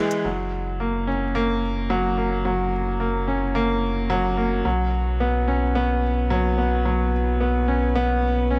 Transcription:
Already playing: E3 G#3 B3 G#4 B4
0.11 closed hi-hat
0.24 F#1 C#3 F#3
0.40 F#4
0.58 A#3
0.80 A#3
1.07 C#4 A#4
1.35 A#3
1.90 F#3
2.17 A#3
2.45 F#3
3.00 A#3
3.27 C#4
3.55 A#3
4.10 F#3
4.37 A#3
4.65 B1 F#3
4.86 B3
4.93 B4
5.20 B3
5.48 C#4
5.75 B3
6.30 F#3
6.58 B3
6.85 F#3
7.40 B3
7.68 C#4
7.95 B3
8.50 C#4

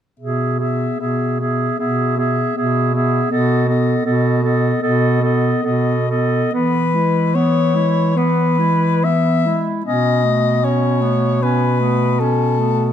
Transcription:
0.19 B2 B3 G#4 E5
0.59 B3 G#4 E5
1.00 B2 B3 G#4 E5
1.40 B3 G#4 E5
1.78 B2 B3 G#4 E5
2.17 B3 G#4 E5
2.56 B2 B3 G#4 E5
2.94 B3 G#4 E5
3.30 B2 B3 A4 D#5
3.68 B3 A4 D#5
4.05 B2 B3 A4 D#5
4.43 B3 A4 D#5
4.81 B2 B3 A4 D#5
5.21 B3 A4 D#5
5.63 B2 B3 A4 D#5
6.09 B3 A4 D#5
6.53 E3 B3 B4
6.94 G#3 E4
7.34 B3 C#5
7.75 G#3 E4
8.15 B3 B4
8.59 G#3 E4
9.04 B3 E5
9.46 G#3 E4
9.85 B2 B3 C#4 D#5
10.24 A3 B3
10.63 B3 C#4 C#5
11.01 A3 B3
11.41 B3 C#4 B4
11.80 A3 B3
12.20 B3 C#4 A4
12.59 A3 B3

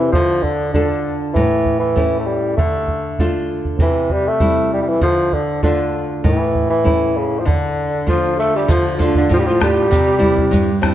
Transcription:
Already playing: E3 C4 E4 G4
0.12 D3 F3, bombo low
0.43 D3, bombo low
0.73 D3 D4 F4 A4, bombo low
1.33 A2 E3, bombo low
1.66 bombo low
1.79 E3
1.96 A3 C#4 E4, bombo low
2.20 A3
2.26 G3
2.57 D3 A3, bombo low
2.88 bombo low
3.19 A3 D4 F4, bombo low
3.65 bombo low
3.79 C3 E3, bombo low
4.09 G3, bombo low
4.27 A3
4.40 G3 C4 E4, bombo low
4.73 G3
4.82 G3
4.89 E3
5.01 D3 F3, bombo low
5.33 D3, bombo low
5.63 D3 A3 D4 F4, bombo low
6.24 A2 E3, bombo low
6.55 bombo low
6.70 E3
6.84 A3 C#4 E4, bombo low
7.16 C#3
7.39 F3
7.45 D3, bombo low
8.06 F3 A3 D4 F4, bombo low
8.39 A3 A4
8.56 G3 G4
8.68 D3 F3 F4, bombo low, shaker
8.97 F3 A3 D4 F4, bombo low
9.01 D3 D4
9.15 D3 D4, bombo low
9.29 A2 F3 F4, bombo low, shaker
9.38 G3 G4
9.46 F3 F4
9.60 G3 A3 D4 F4 G4, bombo rim, bombo low
9.91 C3, bombo low, shaker
10.19 G3 C4 E4, bombo low
10.38 bombo low
10.51 G2, bombo low, shaker
10.81 G3 C4 E4, bombo rim, bombo low

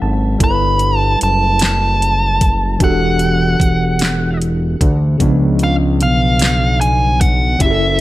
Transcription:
Already playing: F#3 C#4 E4 A4 F#5
0.02 G#1 A5
0.38 G1 G3 E4 A4, kick, closed hi-hat
0.44 A#4 B5
0.51 B4
0.79 closed hi-hat
0.98 A5
1.21 F#1 A5, closed hi-hat
1.59 snare, closed hi-hat
1.63 A5
2.02 closed hi-hat
2.41 kick, closed hi-hat
2.79 E1 E3 D4 F#4, kick, closed hi-hat
2.83 G4 A4 F#5
3.19 closed hi-hat
3.60 E1, kick, closed hi-hat
3.99 snare, closed hi-hat
4.42 closed hi-hat
4.81 D2, kick, closed hi-hat
5.18 C#2 C#3 B3 D4, kick, closed hi-hat
5.24 F3
5.59 closed hi-hat
5.63 F5
6.01 B1 F5, closed hi-hat
6.39 snare, closed hi-hat
6.81 G#5, closed hi-hat
7.21 F#5, kick, closed hi-hat
7.59 F#1 F#3 C#4 E5, kick, closed hi-hat
7.63 E4 G4
7.71 A4

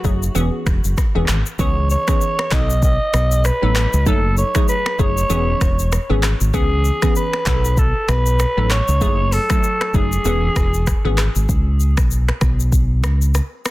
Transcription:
Already playing: F#4
0.04 F#1 F#3 A3 D#4 G#4, kick, shaker
0.23 shaker
0.35 E1 E3 B3 C#4 G#4, shaker
0.66 E1, finger snap, kick, cross-stick, shaker
0.84 F#1, shaker
0.98 finger snap, kick, cross-stick, shaker
1.15 E1 E3 B3 C#4 G#4
1.28 G#1, finger snap, cross-stick, clap, shaker
1.46 shaker
1.59 C#2 E3 B3 C#4 G#4 C#5, kick, shaker
1.90 C#5, shaker
2.08 E3 B3 C#4 G#4, finger snap, kick, cross-stick, shaker
2.21 shaker
2.39 finger snap, cross-stick
2.51 B1 F#3 B3 D#4 A4 D#5, finger snap, kick, cross-stick, clap, shaker
2.70 shaker
2.83 D#5, kick, shaker
3.14 B1, finger snap, cross-stick, shaker
3.32 shaker
3.45 B4, finger snap, cross-stick, shaker
3.62 A1 F#3 B3 D#4 A4
3.75 finger snap, cross-stick, clap, shaker
3.93 C#2, shaker
4.06 F#1 F#3 A3 D#4 A4, kick, shaker
4.37 C#5, shaker
4.55 F#3 A3 D#4 G#4, finger snap, kick, cross-stick, shaker
4.68 B4, shaker
4.86 finger snap, cross-stick
4.99 F#1 F#3 A3 D#4 G#4 C#5, kick, shaker
5.18 shaker
5.29 E1 E3 B3 C#4 G#4, shaker
5.61 E1, finger snap, kick, cross-stick, shaker
5.79 shaker
5.92 finger snap, cross-stick, shaker
6.09 G#1 E3 B3 C#4 G#4
6.23 finger snap, cross-stick, clap, shaker
6.41 G#1, shaker
6.53 C#2 E3 B3 C#4 G#4, kick, shaker
6.85 shaker
7.02 E3 B3 C#4 G#4, finger snap, kick, cross-stick, shaker
7.16 B4, shaker
7.33 finger snap, cross-stick
7.46 B1 F#3 B3 D#4 A4, finger snap, kick, cross-stick, clap, shaker
7.65 shaker
7.77 A4, kick, shaker
8.09 B1 B4, finger snap, cross-stick, shaker
8.26 shaker
8.39 finger snap, cross-stick, shaker
8.57 A1 F#3 B3 D#4 A4
8.70 C#5, finger snap, cross-stick, clap, shaker
8.88 C#2, shaker
9.01 F#1 F#3 A3 D#4 G#4, kick, shaker
9.32 A4, open hi-hat, shaker
9.50 F#3 A3 D#4 A4, finger snap, kick, cross-stick, shaker
9.63 shaker
9.81 finger snap, cross-stick
9.94 F#1 F#3 A3 D#4 G#4, kick, shaker
10.12 shaker
10.25 E1 E3 B3 C#4 G#4, shaker
10.56 E1, finger snap, kick, cross-stick, shaker
10.74 shaker
10.87 finger snap, kick, cross-stick, shaker
11.05 G#1 E3 B3 C#4 G#4
11.18 finger snap, cross-stick, clap, shaker
11.36 G#1, shaker
11.49 C#2, kick, shaker
11.80 shaker
11.97 B1, finger snap, kick, cross-stick, shaker
12.11 shaker
12.28 finger snap, cross-stick
12.41 B1, finger snap, kick, cross-stick, shaker
12.60 shaker
12.72 kick, shaker
13.03 C#2, finger snap, cross-stick, shaker
13.22 shaker
13.35 finger snap, cross-stick, shaker
13.65 finger snap, cross-stick, shaker

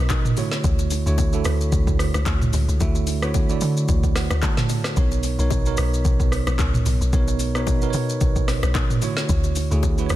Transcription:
Already playing: B2 B3 D#4 A#4 D#5
0.10 kick, clap, high bongo, low bongo, shaker
0.25 mid tom, shaker
0.37 D3 A3 E4 F#4 C#5, open hi-hat, high bongo, shaker
0.52 snare, shaker
0.64 D2, kick, low conga, shaker
0.79 high bongo, shaker
0.90 open hi-hat, low bongo, shaker
1.06 D2 D3 A3 E4 F#4 C#5, shaker
1.18 kick, high bongo, low conga, shaker
1.33 D3 A3 E4 F#4 A4, shaker
1.45 D2, cross-stick, open hi-hat, shaker
1.61 shaker
1.72 D2, kick, low conga, shaker
1.87 D2, kick, shaker
1.99 cross-stick, open hi-hat, shaker
2.14 C#2, cross-stick, low bongo, shaker
2.26 D2, kick, clap, high bongo, low bongo, shaker
2.42 mid tom, shaker
2.53 C#2, open hi-hat, high bongo, shaker
2.68 C#2, shaker
2.80 D2 D3 A3 E4 F#4 E5, kick, low conga, shaker
2.95 high bongo, shaker
3.07 open hi-hat, low bongo, shaker
3.22 D3 A3 E4 F#4 C#5, cross-stick, shaker
3.34 kick, high bongo, low conga, shaker
3.49 D3 A3 E4 F#4 D5, shaker
3.61 D3, open hi-hat, shaker
3.77 shaker
3.88 D2, kick, low conga, shaker
4.03 kick, shaker
4.16 F#5, cross-stick, snare, open hi-hat, shaker
4.31 D2, cross-stick, low bongo, shaker
4.42 A5, kick, clap, high bongo, low bongo, shaker
4.57 snare, mid tom, shaker
4.69 mid tom, open hi-hat, high bongo, shaker
4.84 cross-stick, snare, shaker
4.96 B1 B2 B3 D#4 A#4 C#5, kick, low conga, shaker
5.12 high bongo, shaker
5.23 open hi-hat, low bongo, shaker
5.38 B1 B2 B3 D#4 A#4 C#5, shaker
5.50 kick, high bongo, low conga, shaker
5.65 B2 B3 D#4 A#4 C#5, shaker
5.77 B1, cross-stick, open hi-hat, shaker
5.94 shaker
6.05 B1, kick, low conga, shaker
6.20 B1, kick, shaker
6.32 cross-stick, open hi-hat, shaker
6.47 A#1, cross-stick, low bongo, shaker
6.59 C#2, kick, clap, high bongo, low bongo, shaker
6.74 mid tom, shaker
6.86 B1, open hi-hat, high bongo, shaker
7.01 B1, shaker
7.13 B1 B2 B3 D#4 A#4 C#5, kick, low conga, shaker
7.28 high bongo, shaker
7.39 open hi-hat, low bongo, shaker
7.55 B2 B3 D#4 A#4 C#5, cross-stick, shaker
7.67 kick, high bongo, low conga, shaker
7.82 B2 B3 D#4 A#4 B4, shaker
7.90 B2 C#5, open hi-hat, shaker
8.09 shaker
8.21 B1, kick, low conga, shaker
8.36 kick, shaker
8.48 cross-stick, snare, open hi-hat, shaker
8.63 B1, cross-stick, low bongo, shaker
8.75 kick, clap, high bongo, low bongo, shaker
8.90 mid tom, shaker
9.02 D3 A3 E4 F#4 C#5, open hi-hat, high bongo, shaker
9.17 snare, shaker
9.29 D2, kick, low conga, shaker
9.44 high bongo, shaker
9.56 open hi-hat, low bongo, shaker
9.71 D2 D3 A3 E4 F#4 G#4, shaker
9.83 kick, high bongo, low conga, shaker
9.98 D3 A3 E4 F#4 B4, shaker
10.06 C#5, cross-stick, open hi-hat, shaker
10.10 D2

